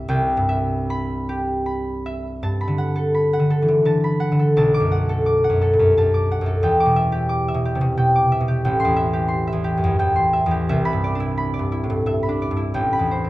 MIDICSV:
0, 0, Header, 1, 2, 480
1, 0, Start_track
1, 0, Key_signature, 1, "major"
1, 0, Tempo, 807537
1, 52, Time_signature, 3, 2, 24, 8
1, 532, Tempo, 767263
1, 1492, Tempo, 712589
1, 2932, Tempo, 692841
1, 3892, Tempo, 674916
1, 6772, Tempo, 694444
1, 9048, End_track
2, 0, Start_track
2, 0, Title_t, "Harp"
2, 0, Program_c, 0, 46
2, 0, Note_on_c, 0, 43, 71
2, 0, Note_on_c, 0, 67, 70
2, 0, Note_on_c, 0, 76, 74
2, 0, Note_on_c, 0, 84, 86
2, 0, Note_on_c, 0, 86, 72
2, 50, Note_on_c, 0, 36, 72
2, 54, Note_on_c, 0, 79, 74
2, 66, Note_off_c, 0, 43, 0
2, 70, Note_off_c, 0, 86, 0
2, 220, Note_on_c, 0, 43, 61
2, 283, Note_off_c, 0, 76, 0
2, 290, Note_on_c, 0, 76, 68
2, 535, Note_on_c, 0, 83, 91
2, 671, Note_off_c, 0, 84, 0
2, 771, Note_off_c, 0, 67, 0
2, 779, Note_on_c, 0, 67, 64
2, 1003, Note_off_c, 0, 83, 0
2, 1010, Note_on_c, 0, 83, 73
2, 1252, Note_off_c, 0, 76, 0
2, 1260, Note_on_c, 0, 76, 68
2, 1485, Note_off_c, 0, 43, 0
2, 1490, Note_on_c, 0, 43, 67
2, 1492, Note_on_c, 0, 81, 63
2, 1510, Note_off_c, 0, 36, 0
2, 1511, Note_off_c, 0, 76, 0
2, 1604, Note_off_c, 0, 83, 0
2, 1612, Note_on_c, 0, 83, 78
2, 1658, Note_on_c, 0, 50, 55
2, 1729, Note_on_c, 0, 78, 57
2, 1846, Note_on_c, 0, 69, 61
2, 1966, Note_off_c, 0, 83, 0
2, 1974, Note_on_c, 0, 83, 62
2, 2092, Note_off_c, 0, 78, 0
2, 2100, Note_on_c, 0, 78, 63
2, 2134, Note_off_c, 0, 50, 0
2, 2142, Note_on_c, 0, 50, 54
2, 2207, Note_off_c, 0, 69, 0
2, 2215, Note_on_c, 0, 69, 59
2, 2296, Note_on_c, 0, 52, 49
2, 2329, Note_off_c, 0, 50, 0
2, 2337, Note_on_c, 0, 50, 61
2, 2444, Note_off_c, 0, 50, 0
2, 2446, Note_off_c, 0, 81, 0
2, 2451, Note_on_c, 0, 50, 58
2, 2455, Note_on_c, 0, 81, 66
2, 2544, Note_off_c, 0, 79, 0
2, 2568, Note_off_c, 0, 52, 0
2, 2568, Note_off_c, 0, 83, 0
2, 2576, Note_on_c, 0, 83, 61
2, 2676, Note_off_c, 0, 78, 0
2, 2684, Note_on_c, 0, 78, 64
2, 2756, Note_off_c, 0, 50, 0
2, 2764, Note_on_c, 0, 50, 59
2, 2806, Note_off_c, 0, 69, 0
2, 2814, Note_on_c, 0, 69, 54
2, 2926, Note_off_c, 0, 81, 0
2, 2932, Note_on_c, 0, 35, 68
2, 2936, Note_on_c, 0, 81, 65
2, 2946, Note_off_c, 0, 50, 0
2, 2951, Note_off_c, 0, 43, 0
2, 2951, Note_off_c, 0, 67, 0
2, 3054, Note_on_c, 0, 86, 79
2, 3094, Note_on_c, 0, 42, 53
2, 3165, Note_off_c, 0, 78, 0
2, 3173, Note_on_c, 0, 78, 60
2, 3287, Note_off_c, 0, 69, 0
2, 3295, Note_on_c, 0, 69, 63
2, 3404, Note_off_c, 0, 86, 0
2, 3412, Note_on_c, 0, 86, 63
2, 3529, Note_off_c, 0, 78, 0
2, 3537, Note_on_c, 0, 78, 63
2, 3567, Note_off_c, 0, 42, 0
2, 3576, Note_on_c, 0, 42, 55
2, 3649, Note_off_c, 0, 69, 0
2, 3657, Note_on_c, 0, 69, 61
2, 3740, Note_on_c, 0, 43, 51
2, 3772, Note_off_c, 0, 42, 0
2, 3780, Note_on_c, 0, 42, 60
2, 3898, Note_off_c, 0, 81, 0
2, 3901, Note_off_c, 0, 42, 0
2, 3907, Note_on_c, 0, 81, 72
2, 3910, Note_on_c, 0, 42, 59
2, 4008, Note_off_c, 0, 43, 0
2, 4017, Note_off_c, 0, 86, 0
2, 4025, Note_on_c, 0, 86, 59
2, 4140, Note_off_c, 0, 78, 0
2, 4149, Note_on_c, 0, 78, 65
2, 4209, Note_off_c, 0, 42, 0
2, 4218, Note_on_c, 0, 42, 60
2, 4244, Note_off_c, 0, 69, 0
2, 4253, Note_on_c, 0, 69, 59
2, 4372, Note_on_c, 0, 40, 68
2, 4376, Note_on_c, 0, 79, 67
2, 4391, Note_off_c, 0, 35, 0
2, 4391, Note_off_c, 0, 69, 0
2, 4393, Note_off_c, 0, 42, 0
2, 4398, Note_off_c, 0, 81, 0
2, 4399, Note_off_c, 0, 78, 0
2, 4487, Note_off_c, 0, 86, 0
2, 4496, Note_on_c, 0, 86, 83
2, 4533, Note_on_c, 0, 47, 58
2, 4610, Note_on_c, 0, 76, 63
2, 4723, Note_on_c, 0, 67, 66
2, 4835, Note_off_c, 0, 86, 0
2, 4844, Note_on_c, 0, 86, 67
2, 4971, Note_off_c, 0, 76, 0
2, 4980, Note_on_c, 0, 76, 66
2, 5015, Note_off_c, 0, 47, 0
2, 5023, Note_on_c, 0, 47, 61
2, 5093, Note_off_c, 0, 67, 0
2, 5101, Note_on_c, 0, 67, 63
2, 5171, Note_on_c, 0, 48, 56
2, 5204, Note_off_c, 0, 47, 0
2, 5213, Note_on_c, 0, 47, 68
2, 5304, Note_off_c, 0, 83, 0
2, 5320, Note_off_c, 0, 79, 0
2, 5323, Note_off_c, 0, 47, 0
2, 5330, Note_on_c, 0, 47, 61
2, 5330, Note_on_c, 0, 79, 70
2, 5448, Note_off_c, 0, 48, 0
2, 5450, Note_off_c, 0, 86, 0
2, 5459, Note_on_c, 0, 86, 68
2, 5566, Note_off_c, 0, 76, 0
2, 5574, Note_on_c, 0, 76, 66
2, 5628, Note_off_c, 0, 47, 0
2, 5637, Note_on_c, 0, 47, 61
2, 5680, Note_off_c, 0, 67, 0
2, 5689, Note_on_c, 0, 67, 65
2, 5800, Note_off_c, 0, 79, 0
2, 5808, Note_on_c, 0, 33, 73
2, 5810, Note_on_c, 0, 79, 70
2, 5824, Note_off_c, 0, 47, 0
2, 5834, Note_off_c, 0, 86, 0
2, 5835, Note_off_c, 0, 40, 0
2, 5915, Note_on_c, 0, 84, 91
2, 5950, Note_on_c, 0, 40, 63
2, 6025, Note_off_c, 0, 76, 0
2, 6034, Note_on_c, 0, 76, 67
2, 6145, Note_off_c, 0, 67, 0
2, 6154, Note_on_c, 0, 67, 62
2, 6251, Note_off_c, 0, 84, 0
2, 6260, Note_on_c, 0, 84, 74
2, 6387, Note_off_c, 0, 76, 0
2, 6396, Note_on_c, 0, 76, 64
2, 6424, Note_off_c, 0, 40, 0
2, 6433, Note_on_c, 0, 40, 59
2, 6506, Note_off_c, 0, 67, 0
2, 6515, Note_on_c, 0, 67, 68
2, 6609, Note_on_c, 0, 42, 55
2, 6646, Note_off_c, 0, 40, 0
2, 6654, Note_on_c, 0, 40, 70
2, 6755, Note_off_c, 0, 79, 0
2, 6758, Note_off_c, 0, 40, 0
2, 6764, Note_on_c, 0, 79, 74
2, 6767, Note_on_c, 0, 40, 60
2, 6870, Note_off_c, 0, 84, 0
2, 6879, Note_on_c, 0, 84, 68
2, 6881, Note_off_c, 0, 42, 0
2, 6991, Note_off_c, 0, 76, 0
2, 6999, Note_on_c, 0, 76, 68
2, 7080, Note_off_c, 0, 40, 0
2, 7088, Note_on_c, 0, 40, 64
2, 7114, Note_off_c, 0, 67, 0
2, 7122, Note_on_c, 0, 67, 62
2, 7241, Note_off_c, 0, 76, 0
2, 7248, Note_on_c, 0, 36, 77
2, 7251, Note_on_c, 0, 76, 72
2, 7261, Note_off_c, 0, 33, 0
2, 7265, Note_off_c, 0, 40, 0
2, 7358, Note_on_c, 0, 83, 88
2, 7412, Note_on_c, 0, 43, 57
2, 7489, Note_on_c, 0, 74, 66
2, 7566, Note_on_c, 0, 62, 60
2, 7600, Note_on_c, 0, 64, 67
2, 7712, Note_off_c, 0, 83, 0
2, 7721, Note_on_c, 0, 83, 70
2, 7824, Note_off_c, 0, 74, 0
2, 7832, Note_on_c, 0, 74, 65
2, 7861, Note_off_c, 0, 43, 0
2, 7869, Note_on_c, 0, 43, 59
2, 7949, Note_off_c, 0, 64, 0
2, 7958, Note_on_c, 0, 64, 64
2, 8039, Note_on_c, 0, 45, 54
2, 8073, Note_off_c, 0, 43, 0
2, 8082, Note_on_c, 0, 43, 63
2, 8188, Note_off_c, 0, 76, 0
2, 8189, Note_off_c, 0, 43, 0
2, 8195, Note_on_c, 0, 43, 59
2, 8199, Note_on_c, 0, 76, 70
2, 8302, Note_off_c, 0, 83, 0
2, 8310, Note_on_c, 0, 83, 60
2, 8311, Note_off_c, 0, 45, 0
2, 8342, Note_off_c, 0, 62, 0
2, 8351, Note_on_c, 0, 62, 57
2, 8433, Note_off_c, 0, 74, 0
2, 8442, Note_on_c, 0, 74, 64
2, 8496, Note_off_c, 0, 43, 0
2, 8504, Note_on_c, 0, 43, 56
2, 8535, Note_off_c, 0, 64, 0
2, 8544, Note_on_c, 0, 64, 54
2, 8660, Note_off_c, 0, 79, 0
2, 8665, Note_on_c, 0, 33, 71
2, 8670, Note_on_c, 0, 79, 66
2, 8694, Note_off_c, 0, 43, 0
2, 8698, Note_off_c, 0, 62, 0
2, 8703, Note_off_c, 0, 74, 0
2, 8705, Note_off_c, 0, 36, 0
2, 8785, Note_off_c, 0, 83, 0
2, 8793, Note_on_c, 0, 83, 77
2, 8838, Note_on_c, 0, 40, 52
2, 8922, Note_on_c, 0, 72, 57
2, 9012, Note_on_c, 0, 60, 51
2, 9046, Note_off_c, 0, 67, 0
2, 9048, Note_off_c, 0, 33, 0
2, 9048, Note_off_c, 0, 40, 0
2, 9048, Note_off_c, 0, 60, 0
2, 9048, Note_off_c, 0, 64, 0
2, 9048, Note_off_c, 0, 72, 0
2, 9048, Note_off_c, 0, 76, 0
2, 9048, Note_off_c, 0, 79, 0
2, 9048, Note_off_c, 0, 83, 0
2, 9048, Note_off_c, 0, 84, 0
2, 9048, End_track
0, 0, End_of_file